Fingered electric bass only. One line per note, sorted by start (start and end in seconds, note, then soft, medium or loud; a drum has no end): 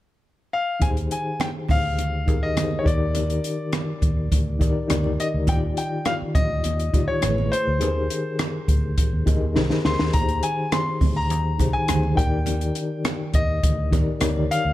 0.82 1.08 D#2 medium
1.70 2.28 D2 medium
2.28 2.57 D#2 medium
2.57 2.83 D2 loud
2.86 3.38 D#2 medium
4.03 4.28 D#2 medium
4.32 4.61 D2 medium
4.61 4.74 D#2 medium
4.90 5.16 D2 medium
5.34 5.48 D2 medium
5.48 5.74 D#2 loud
6.22 muted fingered electric bass stroke soft
6.35 6.61 D2 medium
6.65 6.91 D#2 medium
6.94 7.07 D2 medium
7.23 7.49 A1 medium
7.67 7.82 D2 medium
7.82 8.08 D#2 medium
8.69 8.95 D2 medium
9.13 9.26 D#2 medium
9.27 9.40 D2 medium
9.42 9.55 D#2 medium
9.57 9.69 C2 medium
9.85 9.98 D2 medium
10.00 10.13 D#2 medium
10.14 10.40 D#2 medium
11.01 11.31 D2 medium
11.31 11.57 D#2 medium
11.60 11.73 C2 medium
11.89 12.15 D2 medium
12.18 12.70 D#2 medium
13.34 13.60 D#2 medium
13.64 13.93 D2 medium
13.93 14.06 D#2 medium
14.22 14.47 D2 medium
14.65 14.73 D2 medium